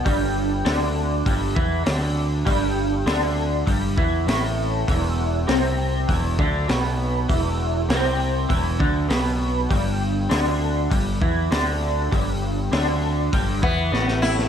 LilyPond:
<<
  \new Staff \with { instrumentName = "Sitar" } { \time 4/4 \key g \major \tempo 4 = 99 r1 | r1 | r1 | r1 |
r1 | r2 r8 b4 e'8 | }
  \new Staff \with { instrumentName = "Clean electric guitar" } { \clef bass \time 4/4 \key g \major <g, g>4 <d d'>4 <g, g>8 <e e'>8 <d d'>4 | <g, g>4 <d d'>4 <g, g>8 <e e'>8 <a, a>4 | <e, e>4 <c c'>4 <e, e>8 <d d'>8 <b, b>4 | <e, e>4 <c c'>4 <e, e>8 <d d'>8 <b, b>4 |
<g, g>4 <d d'>4 <g, g>8 <e e'>8 <d d'>4 | <g, g>4 <d d'>4 <g, g>8 <e e'>8 <a, a>4 | }
  \new Staff \with { instrumentName = "Picked electric bass" } { \clef bass \time 4/4 \key g \major g,,4 d,4 g,,8 e,8 d,4 | g,,4 d,4 g,,8 e,8 a,,4 | e,,4 c,4 e,,8 d,8 b,,4 | e,,4 c,4 e,,8 d,8 b,,4 |
g,,4 d,4 g,,8 e,8 d,4 | g,,4 d,4 g,,8 e,8 a,,4 | }
  \new DrumStaff \with { instrumentName = "Drums" } \drummode { \time 4/4 <hho bd>4 <hho sn>4 <hho bd>8 bd8 <hho sn>4 | <hho bd>4 <hho sn>4 <hho bd>8 bd8 <hho sn>4 | <hho bd>4 <hho sn>4 <hho bd>8 bd8 <hho sn>4 | <hho bd>4 <hho sn>4 <hho bd>8 bd8 <hho sn>4 |
<hho bd>4 <hho sn>4 <hho bd>8 bd8 <hho sn>4 | <hho bd>4 <hho sn>4 <hho bd>8 bd8 sn16 sn16 sn16 sn16 | }
>>